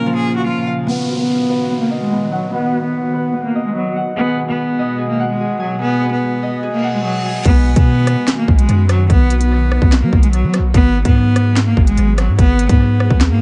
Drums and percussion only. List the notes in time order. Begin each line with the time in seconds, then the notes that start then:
7.45 kick, closed hi-hat, crash
7.76 kick, closed hi-hat
8.07 cross-stick, closed hi-hat
8.28 snare, clap, closed hi-hat
8.48 kick
8.59 closed hi-hat
8.69 closed hi-hat
8.89 cross-stick, closed hi-hat
9.10 kick, closed hi-hat
9.30 closed hi-hat
9.41 closed hi-hat
9.72 cross-stick
9.82 kick
9.92 snare, clap
10.13 kick
10.23 closed hi-hat
10.33 closed hi-hat
10.54 cross-stick, closed hi-hat
10.74 kick, closed hi-hat
11.05 kick, closed hi-hat
11.36 cross-stick, closed hi-hat
11.56 snare, clap, closed hi-hat
11.77 kick
11.87 closed hi-hat
11.97 closed hi-hat
12.18 cross-stick, closed hi-hat
12.39 kick, closed hi-hat
12.59 closed hi-hat
12.69 kick, closed hi-hat
13.00 cross-stick
13.10 kick
13.21 snare, clap